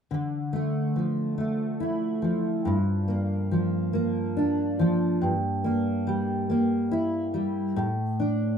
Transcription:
steel-string acoustic guitar
0.11 D3
0.53 A3
0.96 F3
1.38 A3
1.80 E4
2.22 F3
2.65 G2
3.08 A#3
3.51 F3
3.93 A#3
4.37 D4
4.79 F3
5.21 G2
5.64 A#3
6.07 G3
6.50 A#3
6.91 E4
7.34 G3
7.76 A2
8.20 D4

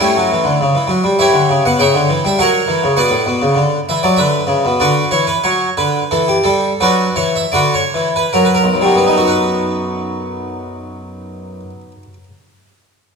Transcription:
harpsichord
0.00 G3 A3 C#4 E4
0.16 F#3
0.32 E3
0.44 D3
0.61 C#3
0.75 E3
0.87 F#3
1.04 G3
1.19 E3 G4 C#5 E5
1.33 D3
1.49 C#3
1.65 B2 F#5
1.79 C#3 C#5 E5 G5
1.94 D3
2.09 E3
2.25 G3 E5
2.39 F#3 A#4 C#5 F#5
2.68 E3
2.84 C#3
2.97 B2 B4 D5 F#5
3.10 A2
3.26 B2
3.42 C#3
3.55 D3
3.89 E3 E5
4.03 F#3 D5
4.17 D3 B4 E5
4.47 C#3
4.65 B2
4.80 D3 F#4 B4 D5
5.11 E3 C#5
5.27 B4
5.44 F#3 C#5
5.77 D3 B4
6.11 E3 A4
6.28 G4
6.44 G3 A4
6.80 F#3 D4 F#4 B4
7.16 E3 C#5
7.36 E5
7.52 D3 F#4 B4 D5
7.74 C#5
7.94 E3
8.16 B4
8.33 F#3 A#4
8.45 B4
8.55 A#4
8.64 B1
8.74 F#2
8.81 F#3 G3
8.95 B3
9.06 D#4
9.17 F#4
9.28 B4

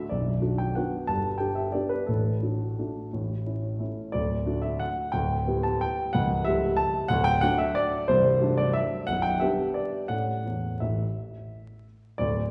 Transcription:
grand piano
0.09 B0 B1 D5
0.41 D4 F#4
0.58 G5
0.75 B3 D4 F#4 F#5
1.07 G1 G2 A5
1.38 D4 G4 G5
1.55 E5
1.72 B3 D4 G4 D5
1.89 B4
2.06 A1 A2 A4
2.43 D4 F#4
2.79 A3 D4 F#4
3.13 A1 A2
3.46 C#4 E4
3.79 A3 C#4 E4
4.12 D1 D2 D5
4.46 A3 D4 F#4
4.62 E5
4.79 F#5
5.12 D1 D2 G5
5.47 G3 B3 E4
5.63 A5
5.81 G5
6.13 C#1 C#2 F#5
6.44 G3 A3 E4 E5
6.77 A5
7.08 D1 D2 F#5
7.24 G5
7.41 F#3 A3 D4 F#5
7.58 E5
7.75 D5
8.08 C1 C2 C5
8.41 F#3 A3 D4
8.57 D5
8.73 E5
9.07 B0 B1 F#5
9.22 G5
9.40 G3 B3 D4 E5
9.74 D5
10.08 A2 C#4 A4 F#5
10.45 E2
10.80 A1 E5
12.18 D1 D2 D5

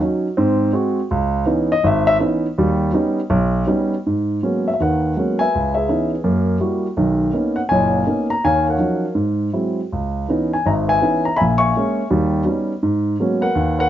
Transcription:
grand piano
0.00 F#3 C#4 D#4
0.37 G#2 C4
0.73 G#3 C4 F#4
1.11 C#2
1.46 E3 B3 C#4 D#4
1.72 D#5
1.84 G#1 E5
2.07 E5
2.19 E3 B3 C#4 D#4
2.58 D#2 G3
2.93 G3 B3 C#4 D#4
3.30 B1
3.67 G3 B3 C#4 D#4
4.06 G#2
4.43 F#3 G#3 A#3 B3 C#4
4.68 E5
4.74 E5
4.80 D#2 D#3 A#4 B4 F#5
5.17 F#3 G#3 A#3 B3 C#4
5.39 B4 E5 G#5
5.55 C#2
5.75 G#4 B4 E5
5.89 E3 B3 C#4 D#4
6.24 F#2 A#3
6.60 G3 A#3 E4 F#4
6.97 B1 D#3
7.33 A#3 B3 C#4 D#4
7.56 F#5
7.69 F#1 A#2 C#5 D#5 G#5
8.07 A#3 B3 C#4 D#4
8.30 A#5
8.44 D#2 C#5 F5 G#5
8.69 A#4 C#5 F#5
8.78 F3 F#3 C#4 D#4
9.15 G#2
9.53 F#3 G#3 C4 E4
9.93 C#2
10.29 E3 B3 C#4 D#4
10.53 G#5
10.66 G#1 D#5 E5 A#5
10.88 B4 E5 G#5
11.02 E3 B3 C#4 D#4
11.25 A#5
11.36 E5 G#5 B5
11.41 A#1 A#2
11.58 E5 G#5 C#6
11.76 G#3 A#3 C#4
12.11 D#2 G3
12.45 G3 B3 C#4 D#4
12.83 G#2
13.20 F#3 G#3 A#3 B3 C#4
13.41 A#4 B4 F#5
13.55 D#2
13.79 A#4 B4 F#5

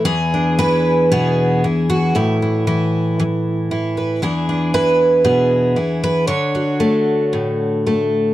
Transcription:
twelve-string acoustic guitar
Already playing: E3
0.05 E2 G#4
0.34 D4
0.59 E3 B4
1.12 B2 G#4
1.64 E3
1.90 F#4
2.15 A2 E3 E4
2.42 E3
2.67 E3
3.19 E3
3.71 E3
3.97 B4
4.22 E2 E3 D4 G#4
4.49 D4
4.74 E3 B4
5.25 B2 G#4
5.76 E3
6.04 B4
6.27 D3 C#5
6.55 F#4
6.80 A3
7.33 A2
7.87 A3

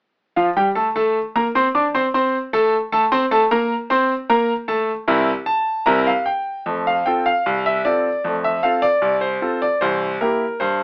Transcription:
grand piano
0.36 F3 F4 F5
0.57 G3 G4 G5
0.75 A3 A4 A5
0.96 A3 A4 A5
1.36 A#3 A#4 A#5
1.55 C4 C5 C6
1.75 D4 D5 D6
1.94 C4 C5 C6
2.14 C4 C5 C6
2.53 A3 A4 A5
2.92 A3 A4 A5
3.12 C4 C5 C6
3.31 A3 A4 A5
3.51 A#3 A#4 A#5
3.90 C4 C5 C6
4.30 A#3 A#4 A#5
4.68 A3 A4 A5
5.08 C2 C4 E4 A#4
5.46 A5
5.86 C2 C4 E4 A#4 A#5
6.07 F5
6.26 G5
6.66 F2 A3
6.87 F5
7.06 C4 F4 A4 G5
7.26 F5
7.46 C2
7.66 E5
7.85 C4 F4 A4 D5
8.24 F2 A3
8.44 E5
8.63 C4 F4 A4 F5
8.82 D5
9.02 C2
9.21 C5
9.42 C4 F4 A4
9.62 D5
9.81 C2 E3 C5
10.21 A#3 E4 G4 A#4
10.60 G2 C5

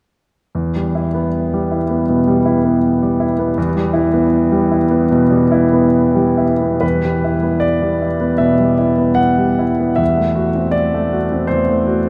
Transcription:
grand piano
0.55 E2
0.76 G3
0.95 E4
1.14 B3
1.53 G3
1.71 E4
1.90 B3
2.09 B2
2.27 G3
2.45 E4
2.65 B3
3.02 G3
3.20 E4
3.39 B3
3.58 E2
3.76 G3
3.93 E4
4.14 B3
4.52 G3
4.71 E4
4.91 B3
5.11 B2
5.31 G3
5.52 E4
5.73 B3
6.15 G3
6.38 E4
6.61 B3
6.81 E2 B4
7.04 G3
7.24 E4
7.43 B3
7.60 D5
7.82 G3
8.02 E4
8.21 B3
8.38 B2 E5
8.59 G3
8.78 E4
8.98 B3
9.15 F#5
9.38 G3
9.59 E4
9.80 B3
9.96 E2 E5
10.17 A3
10.36 F#4
10.55 C4
10.71 D5
10.94 A3
11.12 F#4
11.32 C4
11.47 E2 C5
11.69 A3
11.87 F#4

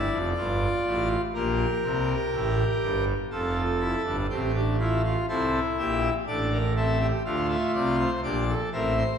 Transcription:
pipe organ
Already playing: E4 D5
0.12 F1 F2
0.36 G1 G2 F4
0.86 A1 A2
1.35 A#1 A#2 G4 A#4
1.84 C2 C3
2.33 A1 A2
2.82 G1 G2
3.31 F1 F2 F4 A4
3.80 E4
4.05 G1 G2 D4
4.30 A1 A2 C4 G4
4.55 D4
4.80 E4 F4
5.04 F4
5.28 C2 C3 E4 A4 C5
5.78 A#1 A#2 G4 E5
6.27 A1 A2 D4 A4 D5
6.52 A#4
6.76 C4 A4 E5
7.01 G4
7.25 D2 D3 A3 F4 F5
7.50 E5
7.75 C2 C3 D5
7.99 C5
8.23 A#1 A#2 D4 G4 D5
8.48 A4
8.73 A1 A2 C4 A#4 E5
8.98 C5

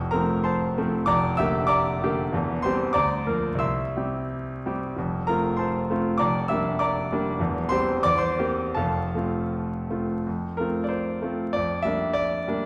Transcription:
grand piano
Already playing: F1 F2
0.11 F3 A3 C4 A#4 A#5
0.44 C5 A5 C6
0.78 F3 A3 C4
1.06 F1 F2 D5 A#5 D6
1.37 D3 A#3 G4 E5 E6
1.67 D5 A#5 D6
2.03 D3 A#3 G4
2.32 E1 E2
2.62 G3 C4 G4 C5 C6
2.93 D2 D5 A#5 D6
3.27 F3 A#3 A#4
3.55 C2
3.59 E5 C6 E6
3.96 G3 C4 G4
4.66 G3 C4 G4
4.96 F1 F2
5.27 A3 C4 F4 A#4 A#5
5.57 C5 A5 C6
5.90 A3 C4 F4
6.18 F1 F2 D5 A#5 D6
6.48 G3 A#3 D4 E5 E6
6.79 D5 A#5 D6
7.12 G3 A#3 D4
7.39 E1 E2
7.69 G3 C4 G4 C5 C6
8.03 E2 D5 D6
8.18 C5 C6
8.39 A#3 C4 G4
8.74 F1 F2 A4 F5 A5
9.15 A3 C4 F4
9.90 A3 C4 F4
10.27 F2
10.57 A3 C4 F4 A#4
10.84 D5
10.89 C5
11.22 A3 C4 F4
11.53 F2 D5
11.83 G3 A#3 D4 E5
12.13 D5
12.48 G3 A#3 D4

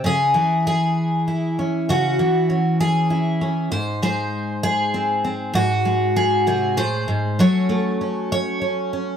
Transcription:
twelve-string acoustic guitar
0.04 C#3 G#4
0.34 E3
0.67 G#4
1.28 E4
1.59 C#4
1.89 C#3 F#4
2.19 E3
2.50 C#4
2.81 G#4
3.10 E4
3.41 C#4
3.72 G#2 C5
4.02 G#3 C5
4.63 G#4
4.94 C4
5.24 C4
5.54 G#2 F#4
5.85 G#3
6.16 G#4
6.47 C3 G#4
6.77 A2 C5
7.08 G#2
7.39 F#3 A3 C#4 C#5
7.69 A3
8.01 C#4
8.32 C#5
8.61 C#4
8.93 C#4

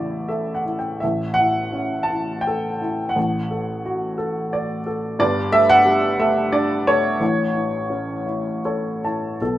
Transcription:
upright piano
Already playing: A1 A2 C#3 E4 D5 E5
0.28 A4 E5
0.54 F#5
0.66 E4
0.79 G5
1.00 A1 A2 E5
1.34 F#5
1.39 E4
1.73 C#4
2.03 A5
2.10 E4
2.41 G5
2.47 A4
2.81 E4
3.09 F#5
3.16 A1 A2
3.51 A4
3.85 F#4
4.18 A4
4.53 D5
4.86 A4
5.19 G1 G2 D5
5.52 A3 E5
5.70 F#5
5.85 G3
6.19 A3 E5
6.52 D4 D5
6.87 A3 C#5
7.20 A1 A2
7.55 E4
7.90 C#4
8.27 E4
8.65 A4 C#5
9.04 E4 A5
9.41 B1 B2 A4

